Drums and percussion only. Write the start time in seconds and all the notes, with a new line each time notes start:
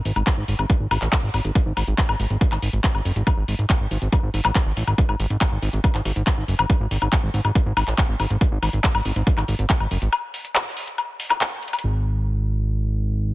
0.05 open hi-hat
0.16 closed hi-hat, high woodblock
0.27 kick, clap, closed hi-hat
0.48 open hi-hat
0.59 closed hi-hat, high woodblock
0.70 kick, closed hi-hat
0.91 open hi-hat, high woodblock
1.02 clap, closed hi-hat
1.12 kick, clap, closed hi-hat
1.34 open hi-hat, high woodblock
1.45 closed hi-hat
1.55 kick, closed hi-hat
1.77 open hi-hat, high woodblock
1.88 closed hi-hat
1.98 kick, clap, closed hi-hat
2.09 high woodblock
2.20 open hi-hat
2.30 closed hi-hat
2.41 kick, closed hi-hat
2.52 clap, high woodblock
2.62 open hi-hat
2.73 closed hi-hat
2.84 kick, clap, closed hi-hat
2.95 high woodblock
3.05 open hi-hat
3.16 closed hi-hat
3.27 kick, closed hi-hat, high woodblock
3.48 open hi-hat
3.59 closed hi-hat
3.70 kick, clap, closed hi-hat, high woodblock
3.91 open hi-hat
4.02 closed hi-hat
4.12 kick, closed hi-hat, high woodblock
4.34 open hi-hat
4.45 clap, closed hi-hat, high woodblock
4.55 kick, clap, closed hi-hat
4.77 open hi-hat
4.87 closed hi-hat, high woodblock
4.98 kick, closed hi-hat
5.09 high woodblock
5.20 open hi-hat
5.30 closed hi-hat
5.41 kick, clap, closed hi-hat, high woodblock
5.62 open hi-hat
5.73 closed hi-hat
5.84 kick, closed hi-hat, high woodblock
5.95 clap
6.05 open hi-hat
6.16 closed hi-hat
6.27 kick, clap, closed hi-hat, high woodblock
6.48 open hi-hat
6.59 closed hi-hat, high woodblock
6.70 kick, closed hi-hat
6.91 open hi-hat
7.02 closed hi-hat, high woodblock
7.13 kick, clap, closed hi-hat
7.34 open hi-hat
7.45 closed hi-hat, high woodblock
7.55 kick, closed hi-hat
7.77 open hi-hat, high woodblock
7.88 clap, closed hi-hat
7.98 kick, clap, closed hi-hat
8.20 open hi-hat, high woodblock
8.30 closed hi-hat
8.41 kick, closed hi-hat
8.63 open hi-hat, high woodblock
8.73 closed hi-hat
8.84 kick, clap, closed hi-hat
8.95 high woodblock
9.05 open hi-hat
9.16 closed hi-hat
9.27 kick, closed hi-hat
9.38 clap, high woodblock
9.48 open hi-hat
9.59 closed hi-hat
9.70 kick, clap, closed hi-hat
9.80 high woodblock
9.91 open hi-hat
10.02 closed hi-hat
10.13 closed hi-hat, high woodblock
10.34 open hi-hat
10.45 closed hi-hat
10.55 clap, closed hi-hat, high woodblock
10.77 open hi-hat
10.87 closed hi-hat
10.98 closed hi-hat, high woodblock
11.20 open hi-hat
11.30 clap, closed hi-hat, high woodblock
11.41 clap, closed hi-hat
11.63 closed hi-hat
11.68 closed hi-hat
11.73 closed hi-hat, high woodblock
11.79 closed hi-hat